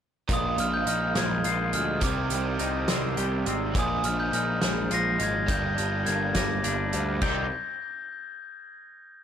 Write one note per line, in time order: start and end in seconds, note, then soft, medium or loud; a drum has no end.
0.28 0.56 A#1 medium
0.28 2.00 A#2 medium
0.28 1.74 A#2 medium
0.28 2.01 F3 medium
0.28 2.01 G#3 medium
0.28 2.02 F4 medium
0.28 kick loud
0.28 closed hi-hat medium
0.33 0.61 D#6 medium
0.58 0.85 A#1 medium
0.58 0.74 F6 medium
0.58 closed hi-hat medium
0.74 0.88 G6 medium
0.86 1.14 A#1 medium
0.86 2.59 D#4 medium
0.86 1.17 F6 medium
0.86 closed hi-hat medium
1.15 1.42 A#1 medium
1.15 1.72 G#3 medium
1.15 1.76 G#6 medium
1.15 snare loud
1.15 closed hi-hat medium
1.44 1.72 A#1 medium
1.44 2.02 F4 medium
1.44 closed hi-hat medium
1.73 2.01 D2 medium
1.73 2.02 G#3 medium
1.73 2.04 F6 medium
1.73 closed hi-hat medium
2.01 2.29 C2 medium
2.01 3.73 C3 medium
2.01 3.47 C3 medium
2.01 3.73 D#3 medium
2.01 3.74 G3 medium
2.01 3.74 C4 medium
2.01 3.75 G4 medium
2.01 3.15 D6 medium
2.01 kick loud
2.01 closed hi-hat medium
2.30 2.58 C2 medium
2.30 closed hi-hat medium
2.59 2.87 C2 medium
2.59 3.75 D#4 medium
2.59 closed hi-hat medium
2.88 3.15 C2 medium
2.88 3.45 C4 medium
2.88 snare loud
2.88 closed hi-hat medium
3.17 3.44 C2 medium
3.17 3.75 G4 medium
3.17 closed hi-hat medium
3.46 3.73 G#1 medium
3.46 3.76 C4 medium
3.46 closed hi-hat medium
3.74 4.02 A#1 medium
3.74 5.46 A#2 medium
3.74 5.20 A#2 medium
3.74 5.47 F3 medium
3.74 5.47 G#3 medium
3.74 5.48 G#4 loud
3.74 kick loud
3.74 closed hi-hat medium
3.79 4.07 D#6 medium
4.04 4.31 A#1 medium
4.04 4.20 F6 medium
4.04 closed hi-hat medium
4.20 4.34 G6 medium
4.32 4.59 A#1 medium
4.32 5.49 D#4 medium
4.32 4.94 F6 medium
4.32 closed hi-hat medium
4.62 4.89 A#1 medium
4.62 5.18 G#3 medium
4.62 snare loud
4.62 closed hi-hat medium
4.90 5.17 A#1 medium
4.90 5.49 F4 medium
4.90 5.19 A#6 loud
4.90 closed hi-hat medium
5.19 5.46 G#1 medium
5.19 5.48 G#3 medium
5.19 5.51 G#6 medium
5.19 closed hi-hat medium
5.46 5.76 G1 medium
5.46 7.19 G2 loud
5.46 6.93 G2 medium
5.46 7.20 D3 medium
5.46 7.20 G3 medium
5.46 7.21 A#3 medium
5.46 7.21 D4 medium
5.46 7.21 G4 medium
5.46 6.09 G6 loud
5.46 kick loud
5.46 closed hi-hat medium
5.78 6.05 G1 medium
5.78 closed hi-hat medium
6.06 6.34 G1 medium
6.06 7.22 A#3 medium
6.06 6.36 G#6 loud
6.06 closed hi-hat medium
6.35 6.62 G1 loud
6.35 6.92 G3 medium
6.35 6.97 A#6 medium
6.35 kick medium
6.35 snare loud
6.35 closed hi-hat medium
6.64 6.92 G1 medium
6.64 7.22 D4 medium
6.64 closed hi-hat medium
6.93 7.21 D2 medium
6.93 7.21 G3 medium
6.93 closed hi-hat medium
7.21 7.49 C2 medium
7.21 7.45 C3 medium
7.21 7.45 D#3 medium
7.21 7.45 G3 medium
7.21 7.45 C4 loud
7.21 7.45 D#4 loud
7.21 7.45 G4 medium
7.21 7.46 G4 medium
7.21 7.46 D5 medium
7.21 7.49 G6 medium
7.21 kick loud
7.21 crash medium